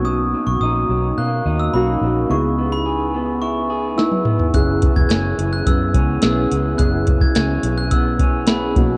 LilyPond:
<<
  \new Staff \with { instrumentName = "Glockenspiel" } { \time 4/4 \key fis \mixolydian \tempo 4 = 107 dis'''8. cis'''16 dis'''4 fis'''8. e'''16 b''4 | cis'''8. b''4~ b''16 cis'''4 e'''4 | fis'''8. gis'''16 gis'''8. fis'''16 e'''4 e'''4 | fis'''8. gis'''16 gis'''8. fis'''16 e'''4 b''4 | }
  \new Staff \with { instrumentName = "Synth keys" } { \time 4/4 \key fis \mixolydian <ais cis' dis' fis'>4 r2 <ais cis' dis' fis'>4 | <b dis' e' gis'>4. r4. <b dis' e' b'>4 | <b cis' e' gis'>4. r4. <b cis' e' gis'>4 | <b cis' e' gis'>4. r4. <b cis' e' gis'>8 <ais cis' dis' fis'>8 | }
  \new Staff \with { instrumentName = "Clean electric guitar" } { \time 4/4 \key fis \mixolydian b,8 fis8 dis'8 fis8 ais8 dis'8 ais8 fis8 | cis8 b8 gis'8 b8 e'8 gis'8 e'8 b8 | fis,8 e8 cis'8 e8 b8 cis'8 b8 e8 | fis,8 e8 cis'8 e8 b8 cis'8 b8 b,8 | }
  \new Staff \with { instrumentName = "Fingered electric bass" } { \clef bass \time 4/4 \key fis \mixolydian b,,8. b,,16 ais,,8 b,,8 b,8 dis,8 b,,8 ais,,8 | cis,2.~ cis,8 r8 | fis,,8. e,,16 fis,,8 fis,,8 fis,8 cis,8 b,,8 cis,8 | fis,,4 cis,8 b,,2 b,,8 | }
  \new DrumStaff \with { instrumentName = "Drums" } \drummode { \time 4/4 r4 r4 r4 r4 | r4 r4 r4 sn16 tommh16 toml16 tomfh16 | <hh bd>8 <hh bd>16 bd16 <hh sn>8 hh8 <hh bd>8 <hh bd>8 <hh sn>8 hh8 | <hh bd>8 <hh bd>16 bd16 <hh sn>8 hh8 <hh bd>8 <hh bd>8 <hh sn>8 <hh bd>8 | }
>>